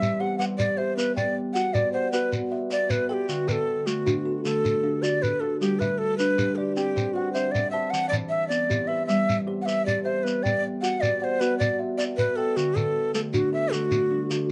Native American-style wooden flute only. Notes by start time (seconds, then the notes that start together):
Already playing: E5
0.20 F#5
0.38 F#5
0.58 D5
0.77 C5
0.97 B4
1.16 D5
1.54 F#5
1.74 D5
1.93 C5
2.12 B4
2.71 D5
2.91 B4
3.10 G4 A4
3.29 F#4
3.48 A4 B4
3.86 F#4
4.44 A4
5.02 D5
5.22 B4
5.40 A4
5.60 G4
5.79 B4
5.98 A4
6.18 B4
6.56 G4
6.76 G4
7.13 F#4
7.33 C5
7.52 D5
7.71 E5
7.90 F#5
8.09 D5
8.29 E5
8.48 D5
8.87 E5
9.07 E5
9.62 E5 F#5
9.86 D5
10.04 C5
10.23 B4
10.43 D5
10.82 F#5
11.01 D5
11.20 C5 D5
11.40 B4
11.58 D5
11.98 D5
12.17 B4
12.36 A4
12.57 F#4
12.77 A4
13.14 A4
13.33 F#4
13.53 E5
13.72 F#4